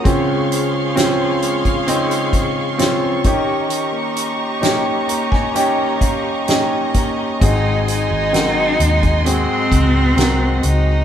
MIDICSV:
0, 0, Header, 1, 7, 480
1, 0, Start_track
1, 0, Key_signature, -5, "major"
1, 0, Tempo, 914634
1, 27, Time_signature, 4, 2, 24, 8
1, 2427, Tempo, 924499
1, 5760, End_track
2, 0, Start_track
2, 0, Title_t, "String section"
2, 0, Program_c, 0, 48
2, 28, Note_on_c, 0, 84, 64
2, 28, Note_on_c, 0, 85, 73
2, 29, Note_on_c, 0, 68, 73
2, 30, Note_on_c, 0, 77, 63
2, 1688, Note_off_c, 0, 68, 0
2, 1688, Note_off_c, 0, 84, 0
2, 1689, Note_off_c, 0, 77, 0
2, 1699, Note_on_c, 0, 75, 55
2, 1700, Note_on_c, 0, 67, 60
2, 1701, Note_on_c, 0, 82, 55
2, 3853, Note_off_c, 0, 67, 0
2, 3853, Note_off_c, 0, 82, 0
2, 3855, Note_off_c, 0, 85, 0
2, 3874, Note_on_c, 0, 80, 64
2, 3876, Note_on_c, 0, 66, 67
2, 3880, Note_on_c, 0, 84, 71
2, 4823, Note_off_c, 0, 80, 0
2, 4837, Note_on_c, 0, 78, 57
2, 5760, Note_off_c, 0, 66, 0
2, 5760, Note_off_c, 0, 75, 0
2, 5760, Note_off_c, 0, 78, 0
2, 5760, Note_off_c, 0, 84, 0
2, 5760, End_track
3, 0, Start_track
3, 0, Title_t, "Cello"
3, 0, Program_c, 1, 42
3, 3878, Note_on_c, 1, 63, 75
3, 4101, Note_off_c, 1, 63, 0
3, 4124, Note_on_c, 1, 63, 90
3, 4837, Note_on_c, 1, 60, 93
3, 4845, Note_off_c, 1, 63, 0
3, 5554, Note_on_c, 1, 63, 75
3, 5562, Note_off_c, 1, 60, 0
3, 5760, Note_off_c, 1, 63, 0
3, 5760, End_track
4, 0, Start_track
4, 0, Title_t, "Grand piano"
4, 0, Program_c, 2, 0
4, 0, Control_c, 2, 64, 127
4, 0, Note_on_c, 2, 70, 52
4, 21, Note_on_c, 2, 60, 73
4, 25, Note_on_c, 2, 49, 66
4, 25, Note_on_c, 2, 61, 69
4, 28, Note_on_c, 2, 65, 77
4, 34, Control_c, 2, 64, 0
4, 132, Control_c, 2, 64, 127
4, 134, Note_off_c, 2, 70, 0
4, 480, Note_off_c, 2, 60, 0
4, 482, Note_off_c, 2, 61, 0
4, 484, Note_off_c, 2, 65, 0
4, 501, Note_on_c, 2, 60, 78
4, 504, Note_on_c, 2, 61, 71
4, 509, Note_on_c, 2, 65, 80
4, 724, Note_off_c, 2, 49, 0
4, 959, Note_off_c, 2, 60, 0
4, 960, Note_off_c, 2, 61, 0
4, 963, Note_off_c, 2, 65, 0
4, 982, Note_on_c, 2, 60, 77
4, 985, Note_on_c, 2, 61, 75
4, 989, Note_on_c, 2, 63, 85
4, 1438, Note_off_c, 2, 60, 0
4, 1440, Note_off_c, 2, 61, 0
4, 1442, Note_off_c, 2, 63, 0
4, 1460, Note_on_c, 2, 60, 69
4, 1462, Note_on_c, 2, 61, 69
4, 1467, Note_on_c, 2, 65, 79
4, 1699, Note_off_c, 2, 61, 0
4, 1702, Note_off_c, 2, 60, 0
4, 1705, Note_off_c, 2, 65, 0
4, 1705, Note_on_c, 2, 51, 57
4, 1707, Note_on_c, 2, 61, 68
4, 1709, Note_on_c, 2, 63, 71
4, 1711, Note_on_c, 2, 67, 78
4, 1712, Control_c, 2, 64, 0
4, 1809, Control_c, 2, 64, 127
4, 2391, Note_off_c, 2, 61, 0
4, 2392, Note_off_c, 2, 63, 0
4, 2394, Note_off_c, 2, 67, 0
4, 2406, Note_off_c, 2, 51, 0
4, 2418, Note_on_c, 2, 61, 71
4, 2423, Note_on_c, 2, 63, 64
4, 2426, Note_on_c, 2, 67, 86
4, 2668, Note_on_c, 2, 82, 56
4, 2779, Note_off_c, 2, 82, 0
4, 2786, Note_on_c, 2, 80, 62
4, 2879, Note_off_c, 2, 61, 0
4, 2882, Note_off_c, 2, 63, 0
4, 2883, Note_off_c, 2, 67, 0
4, 2899, Note_off_c, 2, 80, 0
4, 2907, Note_on_c, 2, 61, 73
4, 2912, Note_on_c, 2, 63, 64
4, 2913, Note_on_c, 2, 67, 84
4, 2913, Note_on_c, 2, 79, 60
4, 3135, Note_off_c, 2, 79, 0
4, 3149, Note_on_c, 2, 77, 53
4, 3367, Note_off_c, 2, 61, 0
4, 3370, Note_off_c, 2, 63, 0
4, 3370, Note_off_c, 2, 67, 0
4, 3375, Note_off_c, 2, 77, 0
4, 3389, Note_on_c, 2, 61, 67
4, 3391, Note_on_c, 2, 63, 63
4, 3391, Note_on_c, 2, 75, 55
4, 3394, Note_on_c, 2, 67, 72
4, 3617, Note_off_c, 2, 75, 0
4, 3639, Note_on_c, 2, 73, 49
4, 3850, Note_off_c, 2, 61, 0
4, 3852, Note_off_c, 2, 63, 0
4, 3853, Note_off_c, 2, 67, 0
4, 3861, Note_off_c, 2, 73, 0
4, 3873, Note_on_c, 2, 60, 59
4, 3876, Note_on_c, 2, 66, 50
4, 3878, Note_on_c, 2, 44, 50
4, 3879, Note_on_c, 2, 68, 64
4, 3882, Control_c, 2, 64, 0
4, 3964, Control_c, 2, 64, 127
4, 4330, Note_off_c, 2, 60, 0
4, 4332, Note_off_c, 2, 66, 0
4, 4334, Note_off_c, 2, 68, 0
4, 4347, Note_on_c, 2, 60, 64
4, 4350, Note_on_c, 2, 66, 59
4, 4352, Note_on_c, 2, 70, 64
4, 4575, Note_off_c, 2, 44, 0
4, 4805, Note_off_c, 2, 60, 0
4, 4806, Note_off_c, 2, 66, 0
4, 4807, Note_off_c, 2, 70, 0
4, 4828, Note_on_c, 2, 60, 63
4, 4832, Note_on_c, 2, 66, 57
4, 4834, Note_on_c, 2, 68, 68
4, 5284, Note_off_c, 2, 60, 0
4, 5286, Note_off_c, 2, 66, 0
4, 5287, Note_off_c, 2, 68, 0
4, 5302, Note_on_c, 2, 60, 65
4, 5306, Note_on_c, 2, 66, 56
4, 5306, Note_on_c, 2, 70, 69
4, 5758, Note_off_c, 2, 60, 0
4, 5760, Note_off_c, 2, 66, 0
4, 5760, Note_off_c, 2, 70, 0
4, 5760, End_track
5, 0, Start_track
5, 0, Title_t, "Clean electric guitar"
5, 0, Program_c, 3, 27
5, 0, Note_on_c, 3, 51, 68
5, 0, Note_on_c, 3, 58, 51
5, 0, Note_on_c, 3, 63, 50
5, 0, Note_on_c, 3, 66, 60
5, 28, Note_on_c, 3, 49, 79
5, 74, Note_off_c, 3, 63, 0
5, 75, Note_off_c, 3, 51, 0
5, 75, Note_off_c, 3, 58, 0
5, 75, Note_off_c, 3, 66, 0
5, 148, Note_on_c, 3, 56, 50
5, 267, Note_on_c, 3, 60, 51
5, 386, Note_on_c, 3, 65, 56
5, 505, Note_on_c, 3, 53, 56
5, 616, Note_off_c, 3, 60, 0
5, 622, Note_on_c, 3, 60, 48
5, 738, Note_off_c, 3, 56, 0
5, 745, Note_on_c, 3, 56, 50
5, 859, Note_off_c, 3, 65, 0
5, 865, Note_on_c, 3, 65, 54
5, 976, Note_off_c, 3, 49, 0
5, 983, Note_on_c, 3, 49, 73
5, 1099, Note_off_c, 3, 56, 0
5, 1105, Note_on_c, 3, 56, 46
5, 1216, Note_off_c, 3, 60, 0
5, 1222, Note_on_c, 3, 60, 47
5, 1339, Note_off_c, 3, 65, 0
5, 1345, Note_on_c, 3, 65, 52
5, 1454, Note_off_c, 3, 53, 0
5, 1461, Note_on_c, 3, 53, 63
5, 1576, Note_off_c, 3, 60, 0
5, 1582, Note_on_c, 3, 60, 49
5, 1699, Note_off_c, 3, 53, 0
5, 1701, Note_on_c, 3, 51, 66
5, 1751, Note_off_c, 3, 49, 0
5, 1751, Note_off_c, 3, 60, 0
5, 1753, Note_off_c, 3, 56, 0
5, 1753, Note_off_c, 3, 65, 0
5, 1821, Note_on_c, 3, 67, 58
5, 1936, Note_off_c, 3, 51, 0
5, 1938, Note_on_c, 3, 51, 69
5, 2060, Note_on_c, 3, 58, 51
5, 2185, Note_on_c, 3, 61, 50
5, 2298, Note_off_c, 3, 67, 0
5, 2304, Note_on_c, 3, 67, 53
5, 2417, Note_off_c, 3, 58, 0
5, 2423, Note_on_c, 3, 58, 48
5, 2535, Note_off_c, 3, 61, 0
5, 2541, Note_on_c, 3, 61, 47
5, 2657, Note_off_c, 3, 58, 0
5, 2663, Note_on_c, 3, 58, 47
5, 2778, Note_off_c, 3, 67, 0
5, 2784, Note_on_c, 3, 67, 46
5, 2902, Note_off_c, 3, 51, 0
5, 2904, Note_on_c, 3, 51, 62
5, 3018, Note_off_c, 3, 58, 0
5, 3025, Note_on_c, 3, 58, 39
5, 3141, Note_off_c, 3, 61, 0
5, 3147, Note_on_c, 3, 61, 47
5, 3261, Note_off_c, 3, 67, 0
5, 3268, Note_on_c, 3, 67, 49
5, 3384, Note_off_c, 3, 58, 0
5, 3390, Note_on_c, 3, 58, 53
5, 3502, Note_off_c, 3, 61, 0
5, 3508, Note_on_c, 3, 61, 43
5, 3625, Note_off_c, 3, 58, 0
5, 3631, Note_on_c, 3, 58, 51
5, 3748, Note_off_c, 3, 67, 0
5, 3754, Note_on_c, 3, 67, 48
5, 3873, Note_on_c, 3, 44, 75
5, 3922, Note_off_c, 3, 61, 0
5, 3923, Note_off_c, 3, 58, 0
5, 3924, Note_off_c, 3, 67, 0
5, 3992, Note_on_c, 3, 56, 44
5, 4114, Note_on_c, 3, 60, 51
5, 4232, Note_on_c, 3, 68, 53
5, 4347, Note_off_c, 3, 51, 0
5, 4349, Note_on_c, 3, 54, 54
5, 4466, Note_off_c, 3, 60, 0
5, 4472, Note_on_c, 3, 60, 43
5, 4586, Note_off_c, 3, 56, 0
5, 4592, Note_on_c, 3, 56, 48
5, 4707, Note_off_c, 3, 68, 0
5, 4713, Note_on_c, 3, 68, 53
5, 4827, Note_off_c, 3, 44, 0
5, 4833, Note_on_c, 3, 44, 66
5, 4944, Note_off_c, 3, 56, 0
5, 4950, Note_on_c, 3, 56, 45
5, 5064, Note_off_c, 3, 60, 0
5, 5070, Note_on_c, 3, 60, 43
5, 5185, Note_off_c, 3, 68, 0
5, 5192, Note_on_c, 3, 68, 56
5, 5306, Note_off_c, 3, 54, 0
5, 5309, Note_on_c, 3, 54, 64
5, 5422, Note_off_c, 3, 60, 0
5, 5429, Note_on_c, 3, 60, 51
5, 5540, Note_off_c, 3, 56, 0
5, 5546, Note_on_c, 3, 56, 51
5, 5659, Note_off_c, 3, 68, 0
5, 5666, Note_on_c, 3, 68, 57
5, 5760, Note_off_c, 3, 44, 0
5, 5760, Note_off_c, 3, 54, 0
5, 5760, Note_off_c, 3, 56, 0
5, 5760, Note_off_c, 3, 60, 0
5, 5760, Note_off_c, 3, 68, 0
5, 5760, End_track
6, 0, Start_track
6, 0, Title_t, "Fingered electric bass"
6, 0, Program_c, 4, 33
6, 3875, Note_on_c, 4, 32, 82
6, 4215, Note_off_c, 4, 32, 0
6, 4235, Note_on_c, 4, 32, 73
6, 4573, Note_off_c, 4, 32, 0
6, 4594, Note_on_c, 4, 39, 75
6, 4931, Note_off_c, 4, 39, 0
6, 5069, Note_on_c, 4, 37, 70
6, 5292, Note_off_c, 4, 37, 0
6, 5307, Note_on_c, 4, 36, 80
6, 5530, Note_off_c, 4, 36, 0
6, 5549, Note_on_c, 4, 37, 74
6, 5760, Note_off_c, 4, 37, 0
6, 5760, End_track
7, 0, Start_track
7, 0, Title_t, "Drums"
7, 28, Note_on_c, 9, 36, 90
7, 28, Note_on_c, 9, 42, 71
7, 80, Note_off_c, 9, 36, 0
7, 81, Note_off_c, 9, 42, 0
7, 272, Note_on_c, 9, 42, 68
7, 325, Note_off_c, 9, 42, 0
7, 510, Note_on_c, 9, 42, 66
7, 511, Note_on_c, 9, 38, 91
7, 562, Note_off_c, 9, 42, 0
7, 563, Note_off_c, 9, 38, 0
7, 747, Note_on_c, 9, 42, 62
7, 800, Note_off_c, 9, 42, 0
7, 867, Note_on_c, 9, 36, 65
7, 867, Note_on_c, 9, 42, 34
7, 919, Note_off_c, 9, 36, 0
7, 920, Note_off_c, 9, 42, 0
7, 985, Note_on_c, 9, 42, 72
7, 1038, Note_off_c, 9, 42, 0
7, 1107, Note_on_c, 9, 42, 43
7, 1159, Note_off_c, 9, 42, 0
7, 1222, Note_on_c, 9, 36, 71
7, 1224, Note_on_c, 9, 42, 60
7, 1275, Note_off_c, 9, 36, 0
7, 1276, Note_off_c, 9, 42, 0
7, 1465, Note_on_c, 9, 42, 69
7, 1470, Note_on_c, 9, 38, 86
7, 1518, Note_off_c, 9, 42, 0
7, 1522, Note_off_c, 9, 38, 0
7, 1702, Note_on_c, 9, 42, 56
7, 1704, Note_on_c, 9, 36, 80
7, 1754, Note_off_c, 9, 42, 0
7, 1756, Note_off_c, 9, 36, 0
7, 1943, Note_on_c, 9, 42, 74
7, 1995, Note_off_c, 9, 42, 0
7, 2186, Note_on_c, 9, 42, 63
7, 2239, Note_off_c, 9, 42, 0
7, 2429, Note_on_c, 9, 42, 59
7, 2430, Note_on_c, 9, 38, 97
7, 2481, Note_off_c, 9, 42, 0
7, 2482, Note_off_c, 9, 38, 0
7, 2669, Note_on_c, 9, 42, 62
7, 2720, Note_off_c, 9, 42, 0
7, 2788, Note_on_c, 9, 36, 71
7, 2790, Note_on_c, 9, 38, 25
7, 2840, Note_off_c, 9, 36, 0
7, 2842, Note_off_c, 9, 38, 0
7, 2910, Note_on_c, 9, 42, 65
7, 2962, Note_off_c, 9, 42, 0
7, 3147, Note_on_c, 9, 36, 68
7, 3148, Note_on_c, 9, 42, 63
7, 3199, Note_off_c, 9, 36, 0
7, 3200, Note_off_c, 9, 42, 0
7, 3389, Note_on_c, 9, 42, 61
7, 3394, Note_on_c, 9, 38, 85
7, 3441, Note_off_c, 9, 42, 0
7, 3446, Note_off_c, 9, 38, 0
7, 3631, Note_on_c, 9, 42, 62
7, 3633, Note_on_c, 9, 36, 74
7, 3683, Note_off_c, 9, 42, 0
7, 3685, Note_off_c, 9, 36, 0
7, 3875, Note_on_c, 9, 42, 80
7, 3876, Note_on_c, 9, 36, 92
7, 3927, Note_off_c, 9, 42, 0
7, 3928, Note_off_c, 9, 36, 0
7, 4118, Note_on_c, 9, 42, 59
7, 4170, Note_off_c, 9, 42, 0
7, 4357, Note_on_c, 9, 42, 60
7, 4358, Note_on_c, 9, 38, 88
7, 4409, Note_off_c, 9, 42, 0
7, 4410, Note_off_c, 9, 38, 0
7, 4595, Note_on_c, 9, 42, 66
7, 4647, Note_off_c, 9, 42, 0
7, 4714, Note_on_c, 9, 42, 31
7, 4715, Note_on_c, 9, 36, 69
7, 4766, Note_off_c, 9, 42, 0
7, 4767, Note_off_c, 9, 36, 0
7, 4834, Note_on_c, 9, 42, 71
7, 4886, Note_off_c, 9, 42, 0
7, 5070, Note_on_c, 9, 36, 78
7, 5072, Note_on_c, 9, 42, 66
7, 5122, Note_off_c, 9, 36, 0
7, 5124, Note_off_c, 9, 42, 0
7, 5310, Note_on_c, 9, 42, 70
7, 5314, Note_on_c, 9, 38, 90
7, 5362, Note_off_c, 9, 42, 0
7, 5366, Note_off_c, 9, 38, 0
7, 5546, Note_on_c, 9, 42, 63
7, 5598, Note_off_c, 9, 42, 0
7, 5760, End_track
0, 0, End_of_file